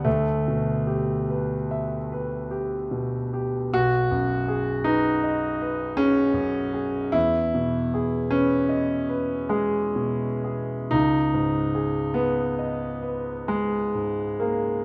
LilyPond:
\new Staff \with { instrumentName = "Grand piano" } { \time 9/8 \key e \minor \tempo 4. = 50 << { d,8 b,8 g'8 b'8 e''8 b'8 g'8 b,8 g'8 | \key b \major b,,8 fis,8 gis'8 b'8 dis''8 b'8 gis'8 fis,8 gis'8 | e,8 b,8 gis'8 b'8 dis''8 b'8 gis'8 b,8 gis'8 | cis,8 gis,8 gis'8 b'8 dis''8 b'8 gis'8 gis,8 gis'8 | } \\ { a2. r4. | fis'4. dis'4. cis'4. | e'4. cis'4. gis4. | dis'4. b4. gis4 ais8 | } >> }